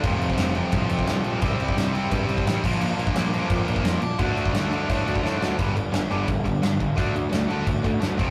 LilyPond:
<<
  \new Staff \with { instrumentName = "Distorted electric guitar" } { \clef bass \time 4/4 \key d \minor \tempo 4 = 173 <f, c f a c'>4. <f, c f a c'>2~ <f, c f a c'>8 | <c g c' e'>4. <c g c' e'>2 <bes, d f bes d'>8~ | <bes, d f bes d'>4 <bes, d f bes d'>2~ <bes, d f bes d'>8 r8 | <d f a d'>4. <d f a d'>2~ <d f a d'>8 |
<g, d g>8 <g, d>8 <g, d>8 <g, d g>8 <g, d>8 <g, d>8 <g, d>8 <g, d>8 | <d a d'>8 <d a>8 <d a>8 <d a d'>8 <d a>8 <d a>8 <d a>8 <f a c'>8 | }
  \new Staff \with { instrumentName = "Distorted electric guitar" } { \clef bass \time 4/4 \key d \minor <f, c f>4. <f, c f>4. <f, c f>4 | <c g c'>4. <c g c'>4. <c g c'>8 <bes, f bes>8~ | <bes, f bes>4 <bes, f bes>4. <bes, f bes>4 r8 | <d a d'>4. <d a d'>4. <d a d'>4 |
<g, d g>4. <g, d g>2~ <g, d g>8 | <d a d'>4. <d a d'>2 <f, c f>8 | }
  \new Staff \with { instrumentName = "Distorted electric guitar" } { \clef bass \time 4/4 \key d \minor <f, c f>2 <f, c f>2 | <c g c'>2 <c g c'>4. <bes, f bes>8~ | <bes, f bes>4. <bes, f bes>2 r8 | <d a d'>2 <d a d'>2 |
<g, d g>8 <g, d>8 <g, d>8 <g, d g>8 <g, d>8 <g, d>8 <g, d>8 <g, d>8 | <d a d'>8 <d a>8 <d a>8 <d a d'>8 <d a>8 <d a>8 <d a>8 <f, c f>8 | }
  \new Staff \with { instrumentName = "Picked electric bass" } { \clef bass \time 4/4 \key d \minor f,,8 f,,8 f,,4 c,8 f,,8 c,8 bes,,8 | c,8 c,8 c,4 g,8 c,8 a,,8 bes,,8 | bes,,8 bes,,8 bes,,4 f,8 bes,,8 f,8 bes,,8 | d,8 d,8 d,4 a,8 d,8 a,8 d,8 |
g,,4 g,,8 g,,8 g,,8 g,,8 g,,8 g,,8 | d,4 d,8 d,8 d,8 d,8 d,8 f,,8 | }
  \new DrumStaff \with { instrumentName = "Drums" } \drummode { \time 4/4 <cymc bd>8 cymc16 bd16 <cymc sn>8 cymc8 <cymc bd>8 cymc16 bd16 <cymc sn>8 cymc8 | <cymc bd>8 cymc16 bd16 <cymc sn>8 cymc8 <cymc bd>8 cymc16 bd16 <cymc sn>8 <cymc bd>8 | cymc8 cymc16 bd16 <cymc sn>8 cymc8 <cymc bd>8 cymc16 bd16 <cymc sn>8 cymc8 | <cymc bd>8 cymc16 bd16 <cymc sn>8 cymc8 <cymc bd>8 cymc16 bd16 sn8 sn8 |
<cymc bd>8 cymc8 <cymc sn>8 cymc8 <cymc bd>8 <cymc bd>8 <cymc sn>8 <cymc bd>8 | <cymc bd>8 cymc8 <cymc sn>8 cymc8 <cymc bd>8 <cymc bd>8 <cymc sn>8 <cymc bd>8 | }
>>